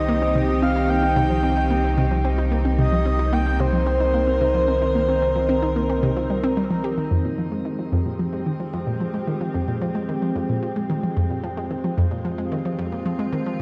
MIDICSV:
0, 0, Header, 1, 5, 480
1, 0, Start_track
1, 0, Key_signature, -3, "minor"
1, 0, Tempo, 540541
1, 555, Time_signature, 4, 2, 24, 8
1, 6315, Key_signature, -4, "minor"
1, 12092, End_track
2, 0, Start_track
2, 0, Title_t, "Soft synth lead"
2, 0, Program_c, 0, 80
2, 0, Note_on_c, 0, 75, 102
2, 555, Note_on_c, 0, 77, 104
2, 569, Note_off_c, 0, 75, 0
2, 794, Note_on_c, 0, 79, 114
2, 808, Note_off_c, 0, 77, 0
2, 2235, Note_off_c, 0, 79, 0
2, 2474, Note_on_c, 0, 75, 102
2, 2957, Note_on_c, 0, 79, 109
2, 2971, Note_off_c, 0, 75, 0
2, 3198, Note_on_c, 0, 72, 103
2, 3211, Note_off_c, 0, 79, 0
2, 5836, Note_off_c, 0, 72, 0
2, 12092, End_track
3, 0, Start_track
3, 0, Title_t, "Ambient pad"
3, 0, Program_c, 1, 92
3, 0, Note_on_c, 1, 51, 79
3, 0, Note_on_c, 1, 60, 71
3, 0, Note_on_c, 1, 63, 69
3, 0, Note_on_c, 1, 67, 87
3, 2464, Note_off_c, 1, 67, 0
3, 2477, Note_on_c, 1, 70, 84
3, 6278, Note_off_c, 1, 63, 0
3, 6279, Note_off_c, 1, 51, 0
3, 6279, Note_off_c, 1, 60, 0
3, 6304, Note_off_c, 1, 70, 0
3, 6315, Note_on_c, 1, 56, 67
3, 6315, Note_on_c, 1, 60, 67
3, 6315, Note_on_c, 1, 67, 84
3, 6316, Note_on_c, 1, 53, 71
3, 10144, Note_off_c, 1, 67, 0
3, 10157, Note_on_c, 1, 65, 85
3, 12092, Note_off_c, 1, 53, 0
3, 12092, Note_off_c, 1, 56, 0
3, 12092, Note_off_c, 1, 60, 0
3, 12092, Note_off_c, 1, 65, 0
3, 12092, End_track
4, 0, Start_track
4, 0, Title_t, "Synth arpeggio sound"
4, 0, Program_c, 2, 84
4, 76, Note_on_c, 2, 58, 84
4, 111, Note_off_c, 2, 58, 0
4, 195, Note_on_c, 2, 60, 74
4, 253, Note_off_c, 2, 60, 0
4, 314, Note_on_c, 2, 48, 98
4, 373, Note_off_c, 2, 48, 0
4, 435, Note_on_c, 2, 53, 74
4, 522, Note_off_c, 2, 53, 0
4, 554, Note_on_c, 2, 60, 81
4, 612, Note_off_c, 2, 60, 0
4, 674, Note_on_c, 2, 63, 72
4, 732, Note_off_c, 2, 63, 0
4, 794, Note_on_c, 2, 58, 72
4, 830, Note_off_c, 2, 58, 0
4, 914, Note_on_c, 2, 60, 80
4, 972, Note_off_c, 2, 60, 0
4, 1034, Note_on_c, 2, 48, 103
4, 1092, Note_off_c, 2, 48, 0
4, 1152, Note_on_c, 2, 53, 72
4, 1241, Note_off_c, 2, 53, 0
4, 1272, Note_on_c, 2, 60, 78
4, 1331, Note_off_c, 2, 60, 0
4, 1393, Note_on_c, 2, 63, 74
4, 1452, Note_off_c, 2, 63, 0
4, 1514, Note_on_c, 2, 58, 85
4, 1549, Note_off_c, 2, 58, 0
4, 1635, Note_on_c, 2, 60, 74
4, 1693, Note_off_c, 2, 60, 0
4, 1755, Note_on_c, 2, 48, 105
4, 1813, Note_off_c, 2, 48, 0
4, 1874, Note_on_c, 2, 53, 72
4, 1962, Note_off_c, 2, 53, 0
4, 1995, Note_on_c, 2, 60, 80
4, 2053, Note_off_c, 2, 60, 0
4, 2114, Note_on_c, 2, 63, 69
4, 2173, Note_off_c, 2, 63, 0
4, 2234, Note_on_c, 2, 58, 76
4, 2269, Note_off_c, 2, 58, 0
4, 2354, Note_on_c, 2, 60, 77
4, 2413, Note_off_c, 2, 60, 0
4, 2474, Note_on_c, 2, 48, 101
4, 2532, Note_off_c, 2, 48, 0
4, 2594, Note_on_c, 2, 53, 78
4, 2682, Note_off_c, 2, 53, 0
4, 2713, Note_on_c, 2, 60, 77
4, 2772, Note_off_c, 2, 60, 0
4, 2834, Note_on_c, 2, 63, 77
4, 2893, Note_off_c, 2, 63, 0
4, 2953, Note_on_c, 2, 58, 85
4, 2989, Note_off_c, 2, 58, 0
4, 3074, Note_on_c, 2, 60, 72
4, 3132, Note_off_c, 2, 60, 0
4, 3192, Note_on_c, 2, 48, 98
4, 3252, Note_off_c, 2, 48, 0
4, 3312, Note_on_c, 2, 53, 76
4, 3400, Note_off_c, 2, 53, 0
4, 3431, Note_on_c, 2, 60, 83
4, 3491, Note_off_c, 2, 60, 0
4, 3554, Note_on_c, 2, 63, 72
4, 3612, Note_off_c, 2, 63, 0
4, 3674, Note_on_c, 2, 58, 82
4, 3709, Note_off_c, 2, 58, 0
4, 3794, Note_on_c, 2, 60, 70
4, 3852, Note_off_c, 2, 60, 0
4, 3914, Note_on_c, 2, 48, 101
4, 3972, Note_off_c, 2, 48, 0
4, 4034, Note_on_c, 2, 53, 72
4, 4122, Note_off_c, 2, 53, 0
4, 4156, Note_on_c, 2, 60, 77
4, 4213, Note_off_c, 2, 60, 0
4, 4276, Note_on_c, 2, 63, 75
4, 4333, Note_off_c, 2, 63, 0
4, 4396, Note_on_c, 2, 58, 79
4, 4430, Note_off_c, 2, 58, 0
4, 4515, Note_on_c, 2, 60, 77
4, 4573, Note_off_c, 2, 60, 0
4, 4636, Note_on_c, 2, 48, 102
4, 4693, Note_off_c, 2, 48, 0
4, 4755, Note_on_c, 2, 53, 78
4, 4842, Note_off_c, 2, 53, 0
4, 4874, Note_on_c, 2, 60, 88
4, 4932, Note_off_c, 2, 60, 0
4, 4994, Note_on_c, 2, 63, 72
4, 5052, Note_off_c, 2, 63, 0
4, 5116, Note_on_c, 2, 58, 73
4, 5150, Note_off_c, 2, 58, 0
4, 5235, Note_on_c, 2, 60, 78
4, 5293, Note_off_c, 2, 60, 0
4, 5354, Note_on_c, 2, 48, 103
4, 5413, Note_off_c, 2, 48, 0
4, 5474, Note_on_c, 2, 53, 78
4, 5562, Note_off_c, 2, 53, 0
4, 5594, Note_on_c, 2, 55, 76
4, 5653, Note_off_c, 2, 55, 0
4, 5714, Note_on_c, 2, 60, 96
4, 5802, Note_off_c, 2, 60, 0
4, 5835, Note_on_c, 2, 55, 82
4, 5870, Note_off_c, 2, 55, 0
4, 5954, Note_on_c, 2, 53, 72
4, 6012, Note_off_c, 2, 53, 0
4, 6074, Note_on_c, 2, 67, 74
4, 6133, Note_off_c, 2, 67, 0
4, 6194, Note_on_c, 2, 51, 77
4, 6281, Note_off_c, 2, 51, 0
4, 6314, Note_on_c, 2, 41, 96
4, 6373, Note_off_c, 2, 41, 0
4, 6435, Note_on_c, 2, 46, 74
4, 6522, Note_off_c, 2, 46, 0
4, 6555, Note_on_c, 2, 53, 71
4, 6613, Note_off_c, 2, 53, 0
4, 6676, Note_on_c, 2, 56, 70
4, 6733, Note_off_c, 2, 56, 0
4, 6795, Note_on_c, 2, 51, 75
4, 6830, Note_off_c, 2, 51, 0
4, 6916, Note_on_c, 2, 53, 70
4, 6974, Note_off_c, 2, 53, 0
4, 7035, Note_on_c, 2, 41, 101
4, 7093, Note_off_c, 2, 41, 0
4, 7155, Note_on_c, 2, 46, 69
4, 7242, Note_off_c, 2, 46, 0
4, 7276, Note_on_c, 2, 53, 82
4, 7333, Note_off_c, 2, 53, 0
4, 7395, Note_on_c, 2, 56, 70
4, 7453, Note_off_c, 2, 56, 0
4, 7515, Note_on_c, 2, 51, 73
4, 7550, Note_off_c, 2, 51, 0
4, 7635, Note_on_c, 2, 53, 69
4, 7693, Note_off_c, 2, 53, 0
4, 7755, Note_on_c, 2, 41, 100
4, 7813, Note_off_c, 2, 41, 0
4, 7874, Note_on_c, 2, 46, 72
4, 7962, Note_off_c, 2, 46, 0
4, 7995, Note_on_c, 2, 53, 75
4, 8053, Note_off_c, 2, 53, 0
4, 8115, Note_on_c, 2, 56, 70
4, 8173, Note_off_c, 2, 56, 0
4, 8235, Note_on_c, 2, 51, 78
4, 8270, Note_off_c, 2, 51, 0
4, 8355, Note_on_c, 2, 53, 73
4, 8413, Note_off_c, 2, 53, 0
4, 8476, Note_on_c, 2, 41, 90
4, 8533, Note_off_c, 2, 41, 0
4, 8595, Note_on_c, 2, 46, 74
4, 8682, Note_off_c, 2, 46, 0
4, 8715, Note_on_c, 2, 53, 80
4, 8773, Note_off_c, 2, 53, 0
4, 8835, Note_on_c, 2, 56, 66
4, 8893, Note_off_c, 2, 56, 0
4, 8957, Note_on_c, 2, 51, 76
4, 8991, Note_off_c, 2, 51, 0
4, 9076, Note_on_c, 2, 53, 69
4, 9134, Note_off_c, 2, 53, 0
4, 9196, Note_on_c, 2, 41, 96
4, 9253, Note_off_c, 2, 41, 0
4, 9317, Note_on_c, 2, 46, 70
4, 9403, Note_off_c, 2, 46, 0
4, 9436, Note_on_c, 2, 53, 77
4, 9494, Note_off_c, 2, 53, 0
4, 9556, Note_on_c, 2, 56, 71
4, 9613, Note_off_c, 2, 56, 0
4, 9676, Note_on_c, 2, 51, 83
4, 9710, Note_off_c, 2, 51, 0
4, 9797, Note_on_c, 2, 53, 69
4, 9854, Note_off_c, 2, 53, 0
4, 9915, Note_on_c, 2, 41, 100
4, 9973, Note_off_c, 2, 41, 0
4, 10036, Note_on_c, 2, 46, 71
4, 10122, Note_off_c, 2, 46, 0
4, 10155, Note_on_c, 2, 53, 83
4, 10213, Note_off_c, 2, 53, 0
4, 10277, Note_on_c, 2, 56, 72
4, 10334, Note_off_c, 2, 56, 0
4, 10395, Note_on_c, 2, 51, 72
4, 10430, Note_off_c, 2, 51, 0
4, 10515, Note_on_c, 2, 53, 70
4, 10573, Note_off_c, 2, 53, 0
4, 10635, Note_on_c, 2, 41, 98
4, 10693, Note_off_c, 2, 41, 0
4, 10755, Note_on_c, 2, 46, 70
4, 10842, Note_off_c, 2, 46, 0
4, 10876, Note_on_c, 2, 53, 73
4, 10933, Note_off_c, 2, 53, 0
4, 10995, Note_on_c, 2, 56, 74
4, 11053, Note_off_c, 2, 56, 0
4, 11115, Note_on_c, 2, 51, 80
4, 11150, Note_off_c, 2, 51, 0
4, 11235, Note_on_c, 2, 53, 73
4, 11293, Note_off_c, 2, 53, 0
4, 11354, Note_on_c, 2, 41, 100
4, 11412, Note_off_c, 2, 41, 0
4, 11473, Note_on_c, 2, 46, 72
4, 11561, Note_off_c, 2, 46, 0
4, 11593, Note_on_c, 2, 53, 78
4, 11652, Note_off_c, 2, 53, 0
4, 11713, Note_on_c, 2, 56, 69
4, 11772, Note_off_c, 2, 56, 0
4, 11833, Note_on_c, 2, 51, 76
4, 11869, Note_off_c, 2, 51, 0
4, 11954, Note_on_c, 2, 53, 69
4, 12013, Note_off_c, 2, 53, 0
4, 12092, End_track
5, 0, Start_track
5, 0, Title_t, "Analog synth bass"
5, 0, Program_c, 3, 38
5, 0, Note_on_c, 3, 36, 89
5, 6290, Note_off_c, 3, 36, 0
5, 12092, End_track
0, 0, End_of_file